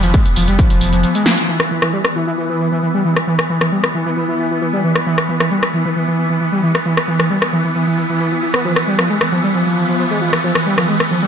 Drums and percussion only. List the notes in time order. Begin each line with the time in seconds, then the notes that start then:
0.03 closed hi-hat
0.14 kick, closed hi-hat
0.26 closed hi-hat
0.36 open hi-hat
0.48 closed hi-hat
0.59 kick, closed hi-hat
0.70 open hi-hat
0.81 open hi-hat
0.93 closed hi-hat
1.03 closed hi-hat
1.15 closed hi-hat
1.26 snare, open hi-hat
1.37 closed hi-hat
1.60 cross-stick
1.82 cross-stick
2.05 cross-stick
3.16 cross-stick
3.39 cross-stick
3.61 cross-stick
3.84 cross-stick
4.96 cross-stick
5.18 cross-stick
5.40 cross-stick
5.63 cross-stick
6.75 cross-stick
6.97 cross-stick
7.20 cross-stick
7.42 cross-stick
8.54 cross-stick
8.76 cross-stick
8.99 cross-stick
9.21 cross-stick
10.33 cross-stick
10.55 cross-stick
10.78 cross-stick
11.00 cross-stick